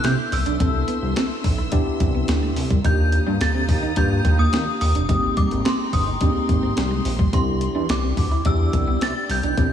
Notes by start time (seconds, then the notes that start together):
Already playing: B3 D4 E4 A4 E5 C6 D6
0.04 C3 C4 G6, snare, closed hi-hat
0.32 C2 E6, muted clean electric guitar stroke, open hi-hat
0.46 B1 D4, closed hi-hat
0.60 C2 B3 C4 D4 E4 A4 E6, kick, closed hi-hat
0.74 muted clean electric guitar stroke
0.88 B3, closed hi-hat
1.02 C2
1.16 C4, snare, closed hi-hat
1.44 B1, muted clean electric guitar stroke, kick, open hi-hat
1.58 E4
1.72 B3 D4 E4 G4, kick, closed hi-hat
1.87 muted clean electric guitar stroke
2.00 C2, kick, closed hi-hat
2.15 B3
2.28 D2, snare, closed hi-hat
2.43 A3
2.56 C2, muted clean electric guitar stroke, open hi-hat
2.70 G3, kick, closed hi-hat
2.84 D#2 A#3 D4 D#4 F4 G4 F5 A#5 D#6 G6, kick, closed hi-hat
3.12 muted clean electric guitar stroke, closed hi-hat
3.26 G2 D4
3.41 D2 A6, snare, closed hi-hat
3.55 C4
3.69 D#2, muted clean electric guitar stroke, kick, open hi-hat
3.83 D#4
3.96 G2 A#3 D4 F4 G4 G6, kick, closed hi-hat
4.25 D#2, muted clean electric guitar stroke, kick, closed hi-hat
4.39 A#3 D#6
4.52 D#3 C4, snare, closed hi-hat
4.81 D#2 D#6, muted clean electric guitar stroke, open hi-hat
4.95 F1 D4, closed hi-hat
5.08 G#1 G#3 A#3 C4 D#4 G4 G5 A#5 C6, kick, closed hi-hat
5.23 muted clean electric guitar stroke
5.37 G3 D6, kick, closed hi-hat
5.51 G#1, closed hi-hat
5.65 C4 C6, snare, closed hi-hat
5.93 G1 D#6, muted clean electric guitar stroke, kick, open hi-hat
6.07 D#4
6.20 A#3 C4 D4 D#4 G4, kick, closed hi-hat
6.35 muted clean electric guitar stroke
6.49 G#1, kick, closed hi-hat
6.63 C4
6.77 C2, snare, closed hi-hat
6.91 G#3
7.05 A#1, muted clean electric guitar stroke, open hi-hat
7.19 G3, kick
7.33 C2 B3 C4 D4 E4 G4 D5 G5 C6, kick, closed hi-hat
7.61 muted clean electric guitar stroke, closed hi-hat
7.75 E2 D4
7.89 C2 D6, snare, closed hi-hat
8.03 C4
8.17 D2, muted clean electric guitar stroke, kick, open hi-hat
8.31 E4
8.45 E2 B3 D4 E4 G4 E6, kick, closed hi-hat
8.73 C2, muted clean electric guitar stroke, kick, closed hi-hat
8.87 B3
9.01 C3 C4 A6, snare, closed hi-hat
9.29 C2 G6, muted clean electric guitar stroke, open hi-hat
9.43 B1 D4, closed hi-hat
9.57 C2 B3 C4 D4 E4 G4, kick, closed hi-hat